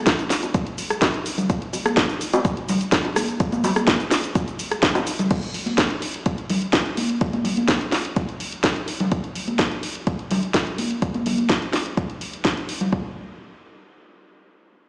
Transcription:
0.07 kick loud
0.07 snare loud
0.07 closed hi-hat medium
0.07 shaker soft
0.19 closed hi-hat soft
0.19 shaker soft
0.30 snare medium
0.30 open hi-hat loud
0.30 shaker medium
0.43 closed hi-hat soft
0.43 high bongo soft
0.43 shaker soft
0.54 kick loud
0.54 closed hi-hat medium
0.54 shaker soft
0.67 closed hi-hat soft
0.78 open hi-hat loud
0.78 shaker medium
0.90 cross-stick medium
0.90 closed hi-hat soft
0.90 shaker soft
1.02 kick loud
1.02 snare loud
1.02 closed hi-hat medium
1.02 high bongo medium
1.02 shaker soft
1.14 closed hi-hat soft
1.26 open hi-hat loud
1.26 shaker medium
1.38 closed hi-hat soft
1.38 low conga medium
1.38 shaker soft
1.50 kick loud
1.50 closed hi-hat loud
1.50 shaker soft
1.62 closed hi-hat soft
1.73 open hi-hat loud
1.73 high bongo soft
1.73 shaker medium
1.85 cross-stick medium
1.85 closed hi-hat soft
1.85 high conga medium
1.85 shaker soft
1.97 kick loud
1.97 snare loud
1.97 closed hi-hat loud
1.97 shaker soft
2.09 closed hi-hat soft
2.09 shaker soft
2.21 open hi-hat loud
2.21 shaker medium
2.33 closed hi-hat soft
2.33 high bongo medium
2.33 shaker soft
2.45 kick loud
2.45 closed hi-hat medium
2.45 shaker soft
2.57 closed hi-hat soft
2.69 open hi-hat loud
2.69 low conga loud
2.69 shaker medium
2.81 closed hi-hat soft
2.81 shaker soft
2.92 kick loud
2.92 snare loud
2.92 closed hi-hat loud
2.92 shaker soft
3.05 closed hi-hat soft
3.05 high bongo soft
3.16 cross-stick medium
3.16 open hi-hat loud
3.16 high conga medium
3.16 shaker medium
3.29 closed hi-hat soft
3.29 shaker soft
3.40 kick loud
3.40 closed hi-hat loud
3.40 shaker soft
3.52 closed hi-hat soft
3.52 high conga medium
3.52 shaker soft
3.64 open hi-hat loud
3.64 high bongo medium
3.64 high conga medium
3.64 low conga medium
3.64 shaker medium
3.76 cross-stick medium
3.76 closed hi-hat soft
3.76 high conga medium
3.76 shaker soft
3.87 kick loud
3.87 snare loud
3.87 closed hi-hat loud
3.87 shaker soft
4.00 closed hi-hat soft
4.00 shaker soft
4.11 snare medium
4.11 open hi-hat loud
4.11 shaker medium
4.24 closed hi-hat soft
4.24 shaker soft
4.35 kick loud
4.35 closed hi-hat loud
4.35 high bongo soft
4.35 shaker soft
4.48 closed hi-hat soft
4.48 shaker soft
4.59 open hi-hat loud
4.59 shaker medium
4.71 cross-stick medium
4.71 closed hi-hat soft
4.71 shaker soft
4.83 kick loud
4.83 snare loud
4.83 closed hi-hat loud
4.83 shaker soft
4.95 closed hi-hat soft
4.95 high bongo medium
4.95 shaker soft
5.07 open hi-hat loud
5.07 shaker medium
5.19 closed hi-hat soft
5.19 low conga medium
5.19 shaker soft
5.31 kick loud
5.31 closed hi-hat loud
5.31 crash medium
5.43 closed hi-hat soft
5.54 open hi-hat loud
5.66 closed hi-hat soft
5.66 high conga medium
5.78 kick loud
5.78 snare loud
5.78 closed hi-hat medium
5.90 closed hi-hat soft
6.02 open hi-hat loud
6.14 closed hi-hat soft
6.26 kick loud
6.26 closed hi-hat loud
6.38 closed hi-hat soft
6.50 open hi-hat loud
6.50 low conga medium
6.62 closed hi-hat soft
6.73 kick loud
6.73 snare loud
6.73 closed hi-hat medium
6.86 closed hi-hat soft
6.97 open hi-hat loud
6.97 high conga medium
7.09 closed hi-hat soft
7.21 kick loud
7.21 closed hi-hat medium
7.33 closed hi-hat soft
7.33 high conga medium
7.44 open hi-hat loud
7.44 high conga medium
7.44 low conga medium
7.57 closed hi-hat soft
7.57 high conga medium
7.68 kick loud
7.68 snare loud
7.68 closed hi-hat medium
7.81 closed hi-hat soft
7.92 snare medium
7.92 open hi-hat loud
8.05 closed hi-hat soft
8.16 kick loud
8.16 closed hi-hat medium
8.29 closed hi-hat soft
8.40 open hi-hat loud
8.52 closed hi-hat soft
8.64 kick loud
8.64 snare loud
8.64 closed hi-hat medium
8.76 closed hi-hat soft
8.88 open hi-hat loud
9.00 closed hi-hat soft
9.00 low conga medium
9.12 kick loud
9.12 closed hi-hat medium
9.24 closed hi-hat soft
9.35 open hi-hat loud
9.48 closed hi-hat soft
9.48 high conga medium
9.59 kick loud
9.59 snare loud
9.59 closed hi-hat medium
9.71 closed hi-hat soft
9.83 open hi-hat loud
9.95 closed hi-hat soft
10.07 kick loud
10.07 closed hi-hat medium
10.19 closed hi-hat soft
10.31 open hi-hat loud
10.31 low conga loud
10.43 closed hi-hat soft
10.54 kick loud
10.54 snare loud
10.54 closed hi-hat medium
10.67 closed hi-hat soft
10.78 open hi-hat loud
10.78 high conga medium
10.91 closed hi-hat soft
11.02 kick loud
11.02 closed hi-hat medium
11.14 closed hi-hat soft
11.14 high conga medium
11.26 open hi-hat loud
11.26 high conga medium
11.26 low conga medium
11.38 closed hi-hat soft
11.38 high conga medium
11.49 kick loud
11.49 snare loud
11.49 closed hi-hat medium
11.62 closed hi-hat soft
11.73 snare medium
11.73 open hi-hat loud
11.86 closed hi-hat soft
11.97 kick loud
11.97 closed hi-hat medium
12.10 closed hi-hat soft
12.21 open hi-hat loud
12.33 closed hi-hat soft
12.45 kick loud
12.45 snare loud
12.45 closed hi-hat medium
12.57 closed hi-hat soft
12.69 open hi-hat loud
12.81 closed hi-hat soft
12.81 low conga medium
12.93 kick loud

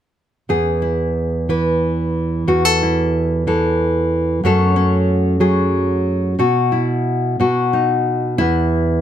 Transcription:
0.49 2.46 E2 medium
0.49 1.49 G#4 soft
0.82 2.44 E4 soft
1.49 3.46 E3 soft
1.49 2.44 B4 soft
2.47 4.43 E2 medium
2.47 2.65 F#4 soft
2.65 3.46 A4 soft
2.83 4.40 E4 soft
3.47 4.44 E3 soft
3.47 4.40 A4 soft
4.44 6.34 F#2 medium
4.44 5.40 F#3 soft
4.44 6.39 A3 soft
4.44 4.75 C#4 soft
4.44 5.40 A4 medium
4.76 6.38 C#4 soft
5.40 6.34 F#3 medium
5.40 6.34 G#4 soft
6.39 7.38 B2 medium
6.39 7.39 F#4 soft
6.72 7.34 E4 soft
7.40 8.41 B2 medium
7.40 8.41 F#4 soft
7.73 8.36 D#4 soft
8.38 9.01 E2 medium
8.38 9.01 E4 medium

